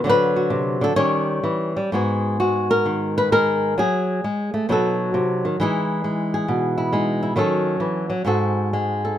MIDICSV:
0, 0, Header, 1, 2, 480
1, 0, Start_track
1, 0, Key_signature, 5, "minor"
1, 0, Tempo, 467290
1, 56, Time_signature, 4, 2, 24, 8
1, 3898, Tempo, 447761
1, 8218, Tempo, 466563
1, 9614, End_track
2, 0, Start_track
2, 0, Title_t, "Nylon-string guitar"
2, 0, Program_c, 0, 24
2, 41, Note_on_c, 0, 50, 68
2, 56, Note_on_c, 0, 54, 46
2, 59, Note_on_c, 0, 60, 45
2, 70, Note_on_c, 0, 66, 46
2, 97, Note_on_c, 0, 71, 87
2, 360, Note_off_c, 0, 66, 0
2, 372, Note_on_c, 0, 66, 45
2, 516, Note_on_c, 0, 48, 60
2, 823, Note_off_c, 0, 50, 0
2, 833, Note_off_c, 0, 48, 0
2, 835, Note_on_c, 0, 50, 62
2, 857, Note_off_c, 0, 71, 0
2, 861, Note_on_c, 0, 69, 78
2, 978, Note_off_c, 0, 60, 0
2, 979, Note_off_c, 0, 66, 0
2, 984, Note_off_c, 0, 50, 0
2, 985, Note_off_c, 0, 69, 0
2, 989, Note_on_c, 0, 51, 61
2, 989, Note_on_c, 0, 73, 101
2, 990, Note_off_c, 0, 54, 0
2, 994, Note_on_c, 0, 55, 41
2, 1000, Note_on_c, 0, 61, 43
2, 1006, Note_on_c, 0, 67, 39
2, 1470, Note_off_c, 0, 51, 0
2, 1474, Note_on_c, 0, 52, 54
2, 1801, Note_off_c, 0, 55, 0
2, 1813, Note_on_c, 0, 55, 54
2, 1821, Note_off_c, 0, 52, 0
2, 1974, Note_on_c, 0, 44, 57
2, 1976, Note_off_c, 0, 61, 0
2, 1979, Note_off_c, 0, 67, 0
2, 1981, Note_off_c, 0, 55, 0
2, 1985, Note_on_c, 0, 56, 41
2, 1989, Note_off_c, 0, 73, 0
2, 1991, Note_on_c, 0, 59, 41
2, 1996, Note_on_c, 0, 66, 38
2, 2002, Note_on_c, 0, 68, 41
2, 2456, Note_off_c, 0, 56, 0
2, 2459, Note_off_c, 0, 66, 0
2, 2463, Note_on_c, 0, 66, 69
2, 2469, Note_on_c, 0, 56, 51
2, 2776, Note_off_c, 0, 68, 0
2, 2780, Note_on_c, 0, 70, 81
2, 2933, Note_on_c, 0, 51, 50
2, 3259, Note_off_c, 0, 70, 0
2, 3263, Note_off_c, 0, 66, 0
2, 3263, Note_on_c, 0, 71, 86
2, 3399, Note_off_c, 0, 56, 0
2, 3410, Note_off_c, 0, 71, 0
2, 3412, Note_on_c, 0, 56, 55
2, 3414, Note_on_c, 0, 70, 83
2, 3867, Note_off_c, 0, 51, 0
2, 3871, Note_off_c, 0, 56, 0
2, 3879, Note_on_c, 0, 54, 59
2, 3886, Note_off_c, 0, 44, 0
2, 3890, Note_off_c, 0, 70, 0
2, 3894, Note_on_c, 0, 68, 74
2, 4374, Note_off_c, 0, 54, 0
2, 4379, Note_on_c, 0, 56, 54
2, 4690, Note_off_c, 0, 56, 0
2, 4694, Note_on_c, 0, 57, 56
2, 4855, Note_on_c, 0, 47, 60
2, 4856, Note_off_c, 0, 57, 0
2, 4860, Note_off_c, 0, 59, 0
2, 4860, Note_on_c, 0, 54, 53
2, 4864, Note_off_c, 0, 68, 0
2, 4864, Note_on_c, 0, 63, 50
2, 4879, Note_on_c, 0, 66, 49
2, 4891, Note_on_c, 0, 69, 61
2, 5336, Note_off_c, 0, 47, 0
2, 5341, Note_on_c, 0, 48, 58
2, 5662, Note_off_c, 0, 48, 0
2, 5671, Note_on_c, 0, 51, 51
2, 5811, Note_off_c, 0, 66, 0
2, 5817, Note_off_c, 0, 69, 0
2, 5819, Note_off_c, 0, 54, 0
2, 5826, Note_off_c, 0, 51, 0
2, 5830, Note_on_c, 0, 52, 62
2, 5840, Note_off_c, 0, 63, 0
2, 5844, Note_on_c, 0, 56, 53
2, 5844, Note_on_c, 0, 63, 51
2, 5851, Note_on_c, 0, 64, 52
2, 5862, Note_on_c, 0, 68, 55
2, 6295, Note_off_c, 0, 56, 0
2, 6307, Note_on_c, 0, 56, 54
2, 6614, Note_off_c, 0, 68, 0
2, 6626, Note_on_c, 0, 68, 54
2, 6780, Note_on_c, 0, 47, 55
2, 7081, Note_off_c, 0, 64, 0
2, 7093, Note_on_c, 0, 64, 51
2, 7240, Note_off_c, 0, 56, 0
2, 7249, Note_off_c, 0, 63, 0
2, 7253, Note_on_c, 0, 56, 57
2, 7262, Note_on_c, 0, 63, 52
2, 7562, Note_off_c, 0, 64, 0
2, 7575, Note_on_c, 0, 64, 50
2, 7712, Note_off_c, 0, 52, 0
2, 7715, Note_off_c, 0, 64, 0
2, 7716, Note_off_c, 0, 56, 0
2, 7716, Note_on_c, 0, 51, 55
2, 7719, Note_off_c, 0, 47, 0
2, 7720, Note_off_c, 0, 63, 0
2, 7726, Note_on_c, 0, 54, 47
2, 7734, Note_on_c, 0, 61, 48
2, 7736, Note_on_c, 0, 66, 47
2, 7740, Note_off_c, 0, 68, 0
2, 7748, Note_on_c, 0, 69, 55
2, 8187, Note_off_c, 0, 51, 0
2, 8191, Note_on_c, 0, 52, 53
2, 8485, Note_off_c, 0, 54, 0
2, 8497, Note_on_c, 0, 54, 55
2, 8515, Note_off_c, 0, 52, 0
2, 8651, Note_on_c, 0, 44, 60
2, 8655, Note_off_c, 0, 54, 0
2, 8660, Note_on_c, 0, 56, 45
2, 8662, Note_off_c, 0, 66, 0
2, 8663, Note_off_c, 0, 61, 0
2, 8667, Note_on_c, 0, 60, 49
2, 8671, Note_off_c, 0, 69, 0
2, 8674, Note_on_c, 0, 66, 48
2, 8681, Note_on_c, 0, 69, 53
2, 9149, Note_off_c, 0, 56, 0
2, 9153, Note_on_c, 0, 56, 56
2, 9463, Note_off_c, 0, 69, 0
2, 9475, Note_on_c, 0, 69, 46
2, 9614, Note_off_c, 0, 44, 0
2, 9614, Note_off_c, 0, 56, 0
2, 9614, Note_off_c, 0, 60, 0
2, 9614, Note_off_c, 0, 66, 0
2, 9614, Note_off_c, 0, 69, 0
2, 9614, End_track
0, 0, End_of_file